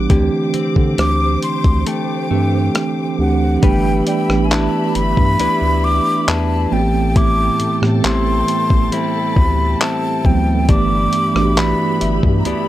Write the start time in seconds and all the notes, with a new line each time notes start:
Already playing: E3 G3 B3 D4 F#4 G4 D6
0.09 D2 D3 E3 A3 C4 D4 G4 C5, kick, closed hi-hat
0.54 D3 C4, closed hi-hat
0.76 D3, kick
0.98 D2 D6, cross-stick, closed hi-hat
1.42 C6, closed hi-hat
1.64 D2, kick, closed hi-hat
1.86 A3 G5, closed hi-hat
2.30 G2 E3 A3 C4 D4 G4
2.75 cross-stick, closed hi-hat
3.18 D2 E3 A3 C4 D4 G4 F#5
3.57 F#5
3.62 G1 E3 G3 A3 B3 D4 G4 B4 E5 G5 B5, kick, closed hi-hat
4.07 D5 G5, closed hi-hat
4.28 A1 E3 A3 B3 D4 G4, cross-stick
4.45 G#5
4.51 D4 E4 B4 A5, clap, closed hi-hat
4.95 G1 B5, closed hi-hat
5.17 G2, kick
5.39 D2 D4 E4 B4, closed hi-hat
5.62 D2
5.84 D6
6.28 E2 D4 E4 B4 A5, clap, closed hi-hat
6.71 A1 A2 E3 A3 B3 C4 F#4 A4 G5 A5
6.80 G4
7.16 A2 E4 D6, kick, closed hi-hat
7.60 A2, closed hi-hat
7.81 A2 E3 A3 B3 C4 G4, cross-stick
8.04 A1 G3 C4 E4 C6, clap, closed hi-hat
8.48 closed hi-hat
8.70 A1, kick
8.92 G3 C4 E4 B5, closed hi-hat
9.36 D2, kick
9.81 G3 C4 E4 A5, clap, closed hi-hat
10.24 D2 E3 F#3 A3 B3 C4 G5, kick
10.68 G1 G2 E3 A3 B3 D4 G4 E5 B5 D6, kick, closed hi-hat
11.13 closed hi-hat
11.35 A1 E3 A3 B3 D4 F#4, cross-stick
11.43 G4
11.57 E3 B3 D4 B5, clap, closed hi-hat
12.01 G1 E5, closed hi-hat
12.23 G2, kick
12.28 G4
12.39 A#5
12.45 D2 E3 B3 D4 B5, closed hi-hat